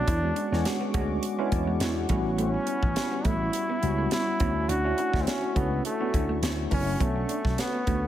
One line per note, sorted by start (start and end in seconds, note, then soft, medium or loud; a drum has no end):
0.00 0.10 C#4 medium
0.00 0.66 D4 loud
0.07 0.30 E2 medium
0.07 0.17 E4 medium
0.07 2.08 G#4 medium
0.07 4.37 F#5 medium
0.07 4.37 C#6 medium
0.07 2.08 D6 medium
0.07 kick loud
0.07 closed hi-hat medium
0.23 0.49 G#3 medium
0.23 0.49 B3 medium
0.23 0.50 C#4 medium
0.23 0.50 D4 medium
0.23 0.50 F#4 medium
0.23 muted clean electric guitar stroke soft
0.36 0.45 D4 medium
0.36 closed hi-hat medium
0.52 0.62 E2 medium
0.52 0.91 G#3 medium
0.52 0.91 B3 medium
0.52 0.91 C#4 medium
0.52 0.91 D4 medium
0.52 0.91 F#4 medium
0.52 snare soft
0.65 muted clean electric guitar stroke soft
0.65 snare medium
0.65 closed hi-hat medium
0.81 0.89 B3 medium
0.94 1.17 D2 medium
0.94 1.35 G#3 medium
0.94 1.03 G#3 medium
0.94 1.35 B3 medium
0.94 1.35 C#4 medium
0.94 1.35 D4 medium
0.94 1.35 F#4 loud
0.94 kick medium
0.94 closed hi-hat medium
1.23 closed hi-hat medium
1.38 2.04 G#3 loud
1.38 2.04 B3 medium
1.38 1.46 B3 medium
1.38 2.04 C#4 medium
1.38 2.04 D4 medium
1.38 2.05 E4 loud
1.52 1.75 E2 medium
1.52 muted clean electric guitar stroke soft
1.52 kick medium
1.52 closed hi-hat medium
1.67 1.75 G#3 medium
1.80 2.03 E2 medium
1.80 snare loud
1.80 closed hi-hat medium
2.09 2.55 A1 medium
2.09 3.16 G3 medium
2.09 4.38 G3 medium
2.09 2.19 A3 medium
2.09 3.16 B3 medium
2.09 3.16 C#4 medium
2.09 3.17 E4 medium
2.09 3.17 F#4 medium
2.09 4.38 B5 medium
2.09 kick loud
2.09 closed hi-hat medium
2.38 2.47 A3 medium
2.38 3.27 C#4 medium
2.38 closed hi-hat medium
2.54 muted clean electric guitar stroke soft
2.67 2.77 C#4 medium
2.67 closed hi-hat medium
2.83 2.93 A1 medium
2.83 kick medium
2.96 muted clean electric guitar stroke soft
2.96 snare loud
2.96 closed hi-hat medium
3.12 3.20 B3 medium
3.25 3.48 A1 medium
3.25 3.34 A3 medium
3.25 4.12 E4 medium
3.25 kick medium
3.25 closed hi-hat medium
3.53 closed hi-hat medium
3.70 3.77 B3 medium
3.82 4.06 C#2 medium
3.82 4.40 G3 medium
3.82 4.40 B3 medium
3.82 4.39 C#4 medium
3.82 4.39 E4 medium
3.82 4.39 F#4 medium
3.82 muted clean electric guitar stroke soft
3.82 closed hi-hat medium
3.99 4.06 A3 medium
4.11 4.71 E4 loud
4.11 snare loud
4.11 closed hi-hat medium
4.40 4.63 D2 medium
4.40 4.81 A3 medium
4.40 4.50 B3 medium
4.40 4.81 C#4 medium
4.40 4.81 D4 medium
4.40 4.81 E4 medium
4.40 4.81 F#4 medium
4.40 6.98 F#4 medium
4.40 6.98 E5 medium
4.40 8.07 C#6 medium
4.40 kick medium
4.40 closed hi-hat medium
4.69 4.92 D2 loud
4.69 4.78 D4 medium
4.69 5.23 F#4 loud
4.69 closed hi-hat medium
4.84 5.11 A3 medium
4.84 5.11 C#4 medium
4.84 5.11 D4 medium
4.84 5.11 E4 medium
4.84 5.12 F#4 medium
4.84 muted clean electric guitar stroke soft
4.98 5.08 E4 medium
4.98 closed hi-hat medium
5.13 5.24 D2 medium
5.13 5.52 A3 medium
5.13 5.53 C#4 medium
5.13 5.53 D4 medium
5.13 5.53 E4 medium
5.13 5.53 F#4 medium
5.13 kick medium
5.13 snare soft
5.22 5.29 C4 medium
5.27 5.58 C#4 medium
5.27 muted clean electric guitar stroke soft
5.27 snare loud
5.27 closed hi-hat medium
5.43 5.50 C#4 medium
5.55 5.79 C#2 medium
5.55 5.96 A3 medium
5.55 5.65 A3 medium
5.55 5.85 B3 medium
5.55 5.96 C#4 medium
5.55 5.96 D4 medium
5.55 5.97 E4 medium
5.55 5.97 F#4 medium
5.55 kick medium
5.55 closed hi-hat medium
5.85 6.41 A3 medium
5.85 closed hi-hat medium
6.00 6.66 A3 medium
6.00 6.08 B3 medium
6.00 6.66 C#4 medium
6.00 6.66 D4 medium
6.00 6.66 E4 medium
6.00 6.66 F#4 medium
6.14 6.37 D2 medium
6.14 kick medium
6.14 closed hi-hat medium
6.29 6.37 A3 medium
6.42 6.65 D2 medium
6.42 snare loud
6.42 closed hi-hat medium
6.70 6.94 F#1 medium
6.70 6.98 A3 medium
6.70 6.80 B3 medium
6.70 6.98 C#4 medium
6.70 7.03 C#4 medium
6.70 6.98 D4 medium
6.70 6.98 E4 medium
6.70 6.98 F#4 medium
6.70 kick medium
6.70 open hi-hat medium
6.99 7.23 B1 loud
6.99 8.07 A3 medium
6.99 7.62 A3 medium
6.99 8.07 B3 medium
6.99 7.09 B3 medium
6.99 8.07 C#4 medium
6.99 8.07 D4 medium
6.99 8.07 F#4 medium
6.99 8.07 A4 medium
6.99 8.07 C#5 medium
6.99 kick loud
6.99 closed hi-hat medium
7.16 muted clean electric guitar stroke soft
7.29 7.38 D4 medium
7.29 closed hi-hat medium
7.45 7.55 B1 medium
7.45 kick medium
7.45 snare soft
7.58 8.07 B3 medium
7.58 muted clean electric guitar stroke soft
7.58 snare medium
7.58 closed hi-hat medium
7.73 7.81 B3 medium
7.87 8.07 D2 medium
7.87 7.96 A3 medium
7.87 kick medium
7.87 closed hi-hat medium